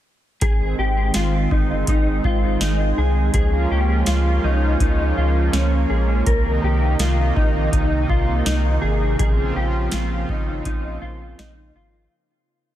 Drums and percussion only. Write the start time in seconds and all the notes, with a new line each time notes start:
0.41 kick, closed hi-hat
1.14 snare, closed hi-hat
1.51 kick
1.87 kick, closed hi-hat
2.24 kick
2.61 snare, closed hi-hat
3.34 kick, closed hi-hat
4.06 snare, closed hi-hat
4.80 kick, closed hi-hat
5.53 snare, closed hi-hat
6.27 kick, closed hi-hat
6.99 snare, closed hi-hat
7.37 kick
7.73 kick, closed hi-hat
8.10 kick
8.46 snare, closed hi-hat
9.19 kick, closed hi-hat
9.92 snare, closed hi-hat
10.29 kick
10.65 kick, closed hi-hat
11.39 snare, closed hi-hat